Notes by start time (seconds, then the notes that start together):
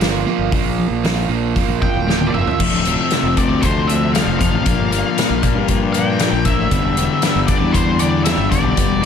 0.00 G1 A#2 F3 A#3, snare, open hi-hat
0.26 A#2 F3 A#3
0.39 G1
0.52 A#1 A#2 F3 A#3, kick, open hi-hat
0.78 A#2 F3
0.90 A#1
1.04 A#2 F3 A#3, snare, open hi-hat
1.29 A#1 A#2 F3 A#3
1.56 A#2 F3 A#3, kick, open hi-hat
1.68 A#1
1.81 A#2 F3 G5, kick
1.94 D1
2.07 A#2 F3 A#3, snare
2.21 high tom
2.28 D5
2.33 F1 A#2 F3 A#3 E5, mid tom
2.47 floor tom
2.58 F1 F2 C3 F3 A3 C4 D4, kick, crash
2.72 D1
2.84 F2 C3 F3 A3 C4 D4, closed hi-hat
3.10 F2 C3 F3 A3 C4 D4, snare, closed hi-hat
3.23 F1
3.36 F2 C3 F3 A3 C4 D4 D5, kick, closed hi-hat
3.49 D2
3.62 F2 C3 F3 A3 C4 C5, kick, closed hi-hat
3.66 D4
3.87 F2 C3 F3 A3 C4 D4 E5, closed hi-hat
4.13 F2 C3 F3 A3 C4 F5, snare, closed hi-hat
4.18 D4
4.27 F1
4.39 F2 C3 A3 C4 D4 F5, kick, closed hi-hat
4.43 F3
4.53 A1
4.65 A#1 A#2 F3 A#3 D4 F4 A#4, kick, closed hi-hat
4.79 G1
4.91 A#2 F3 A#3 D4 F4 A#4, closed hi-hat
5.17 A#2 F3 A#3 D4 F4 A#4, snare, closed hi-hat
5.30 A#1
5.42 A#2 F3 D4 F4 A#4, kick, closed hi-hat
5.46 A#3
5.55 G2
5.68 A#2 F3 A#3 D4 F4 A#4, kick, closed hi-hat
5.93 A#3 D4 F4 A#4 G5, closed hi-hat
5.97 A#2 F3
6.19 A#2 F3 A#3 D4 F4 A#4, snare, closed hi-hat
6.32 A#1
6.45 A#2 F3 A#3 D4 F4 A#4 E5, kick, closed hi-hat
6.58 A1
6.70 G1 G2 D3 G3 B3 D4 G4, kick, closed hi-hat
6.83 E1
6.95 G2 D3 G3 B3 D4 G4, closed hi-hat
7.22 G2 D3 G3 B3 D4 G4, snare, closed hi-hat
7.35 G1
7.47 G2 D3 G3 B3 D4 G4 D5, kick, closed hi-hat
7.61 E2
7.73 G2 D3 G3 B3 D4 G4 C5, kick, closed hi-hat
7.99 G2 D3 G3 B3 D4 G4 D5, closed hi-hat
8.24 G2 D3 G3 B3 D4 E5, snare, closed hi-hat
8.28 G4
8.38 G1
8.49 G2 D3 G3 D4 G4 D5, kick, closed hi-hat
8.53 G3 B3
8.64 B1
8.77 G1 G2 D3 G3 B3 D4 G4, kick, closed hi-hat
8.90 E1
9.02 G2 D3